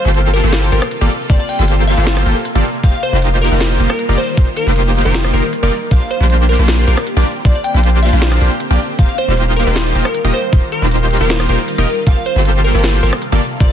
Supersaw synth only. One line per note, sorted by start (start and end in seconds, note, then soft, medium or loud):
0.05 0.41 A#3 medium
0.05 0.41 F4 medium
0.05 0.41 G4 medium
0.05 0.41 A4 medium
0.05 0.41 C5 medium
0.44 0.70 A#3 medium
0.44 0.70 F4 medium
0.44 0.70 G4 medium
0.44 0.70 A4 medium
0.44 0.70 C5 loud
0.72 0.82 A#3 loud
0.72 0.82 F4 medium
0.72 0.82 G4 medium
0.72 0.82 A4 medium
0.72 0.82 C5 loud
1.01 1.10 A#3 loud
1.01 1.10 F4 medium
1.01 1.10 G4 medium
1.01 1.10 A4 medium
1.01 1.10 D5 loud
1.30 1.40 A#3 medium
1.30 1.40 F4 medium
1.30 1.40 G4 medium
1.30 1.40 A4 medium
1.30 1.40 C5 loud
1.59 1.95 A#3 medium
1.59 1.95 F4 medium
1.59 1.95 G4 medium
1.59 1.95 A4 medium
1.59 1.95 C5 medium
1.97 2.24 A#3 medium
1.97 2.24 F4 medium
1.97 2.24 G4 medium
1.97 2.24 A4 medium
1.97 2.24 C5 loud
2.26 2.36 A#3 loud
2.26 2.36 F4 loud
2.26 2.36 G4 medium
2.26 2.36 A4 loud
2.26 2.36 C5 loud
2.55 2.64 A#3 loud
2.55 2.64 F4 medium
2.55 2.64 G4 medium
2.55 2.64 A4 medium
2.55 2.64 D5 loud
2.84 2.94 A#3 medium
2.84 2.94 D#4 medium
2.84 2.94 F4 medium
2.84 2.94 G4 medium
2.84 2.94 C5 loud
3.13 3.49 A#3 medium
3.13 3.49 D#4 medium
3.13 3.49 F4 medium
3.13 3.49 G4 medium
3.13 3.49 C5 medium
3.51 3.78 A#3 medium
3.51 3.78 D#4 medium
3.51 3.78 F4 medium
3.51 3.78 G4 medium
3.51 3.78 C5 loud
3.80 3.90 A#3 loud
3.80 3.90 D#4 medium
3.80 3.90 F4 medium
3.80 3.90 G4 medium
3.80 3.90 C5 loud
4.09 4.18 A#3 loud
4.09 4.18 D#4 loud
4.09 4.18 F4 medium
4.09 4.18 G4 medium
4.09 4.18 D5 loud
4.37 4.47 A#3 medium
4.37 4.47 D#4 medium
4.37 4.47 F4 medium
4.37 4.47 G4 medium
4.37 4.47 C5 loud
4.67 5.03 A#3 medium
4.67 5.03 D#4 medium
4.67 5.03 F4 medium
4.67 5.03 G4 medium
4.67 5.03 C5 medium
5.05 5.32 A#3 medium
5.05 5.32 D#4 medium
5.05 5.32 F4 medium
5.05 5.32 G4 medium
5.05 5.32 C5 loud
5.34 5.43 A#3 loud
5.34 5.44 D#4 loud
5.34 5.44 F4 medium
5.34 5.44 G4 loud
5.34 5.44 C5 loud
5.63 5.72 A#3 loud
5.63 5.72 D#4 medium
5.63 5.72 F4 loud
5.63 5.72 G4 medium
5.63 5.72 D5 loud
5.91 6.01 A#3 medium
5.91 6.01 D4 medium
5.91 6.01 F4 medium
5.91 6.01 G4 medium
5.91 6.01 C5 loud
6.21 6.57 A#3 medium
6.21 6.57 D4 medium
6.21 6.57 F4 medium
6.21 6.57 G4 medium
6.21 6.57 C5 medium
6.59 6.85 A#3 medium
6.59 6.85 D4 medium
6.59 6.85 F4 medium
6.59 6.85 G4 medium
6.59 6.85 C5 loud
6.87 6.97 A#3 loud
6.87 6.97 D4 medium
6.87 6.97 F4 medium
6.87 6.97 G4 loud
6.87 6.97 C5 loud
7.17 7.26 A#3 loud
7.17 7.26 D4 medium
7.17 7.26 F4 loud
7.17 7.26 G4 medium
7.17 7.26 D5 loud
7.45 7.55 A#3 medium
7.45 7.55 D4 medium
7.45 7.55 F4 medium
7.45 7.55 G4 medium
7.45 7.55 C5 loud
7.74 8.10 A#3 medium
7.74 8.10 D4 medium
7.74 8.10 F4 medium
7.74 8.10 G4 medium
7.74 8.10 C5 medium
8.13 8.39 A#3 loud
8.13 8.39 D4 medium
8.13 8.39 F4 medium
8.13 8.39 G4 medium
8.13 8.39 C5 loud
8.41 8.51 A#3 loud
8.41 8.51 D4 medium
8.41 8.51 F4 loud
8.41 8.51 G4 loud
8.41 8.51 C5 loud
8.71 8.80 A#3 loud
8.71 8.80 D4 medium
8.71 8.80 F4 loud
8.71 8.80 G4 loud
8.71 8.80 D5 loud
8.99 9.09 A#3 medium
8.99 9.09 D#4 medium
8.99 9.09 F4 medium
8.99 9.09 G4 medium
8.99 9.09 C5 loud
9.28 9.64 A#3 medium
9.28 9.64 D#4 medium
9.28 9.64 F4 medium
9.28 9.64 G4 medium
9.28 9.64 C5 medium
9.67 9.93 A#3 medium
9.67 9.93 D#4 medium
9.67 9.93 F4 medium
9.67 9.93 G4 medium
9.67 9.93 C5 loud
9.95 10.05 A#3 loud
9.95 10.05 D#4 medium
9.95 10.05 F4 medium
9.95 10.05 G4 medium
9.95 10.05 C5 loud
10.24 10.33 A#3 loud
10.24 10.34 D#4 medium
10.24 10.33 F4 medium
10.24 10.34 G4 medium
10.24 10.34 D#5 loud
10.53 10.63 A#3 medium
10.53 10.63 D#4 medium
10.53 10.63 F4 medium
10.53 10.63 G4 medium
10.53 10.63 C5 loud
10.82 11.18 A#3 medium
10.82 11.18 D#4 medium
10.82 11.18 F4 medium
10.82 11.18 G4 medium
10.82 11.18 C5 medium
11.20 11.47 A#3 medium
11.20 11.47 D#4 medium
11.20 11.47 F4 medium
11.20 11.47 G4 medium
11.20 11.47 C5 loud
11.49 11.59 A#3 loud
11.49 11.59 D#4 medium
11.49 11.59 F4 loud
11.49 11.59 G4 medium
11.49 11.59 C5 loud
11.78 11.87 A#3 loud
11.78 11.87 D#4 medium
11.78 11.87 F4 loud
11.78 11.87 G4 medium
11.78 11.87 D#5 loud
12.07 12.17 A#3 medium
12.07 12.17 F4 medium
12.07 12.17 G4 medium
12.07 12.17 A4 medium
12.07 12.17 C5 loud
12.36 12.72 A#3 medium
12.36 12.72 F4 medium
12.36 12.72 G4 medium
12.36 12.72 A4 medium
12.36 12.72 C5 medium
12.74 13.01 A#3 loud
12.74 13.01 F4 medium
12.74 13.01 G4 medium
12.74 13.01 A4 medium
12.74 13.01 C5 loud
13.03 13.13 A#3 loud
13.03 13.13 F4 medium
13.03 13.13 G4 loud
13.03 13.13 A4 loud
13.03 13.13 C5 loud
13.32 13.41 A#3 loud
13.32 13.41 F4 medium
13.32 13.41 G4 medium
13.32 13.41 A4 medium
13.32 13.41 D5 loud
13.61 13.70 A#3 medium
13.61 13.70 F4 medium
13.61 13.70 G4 medium
13.61 13.70 A4 medium
13.61 13.70 C5 loud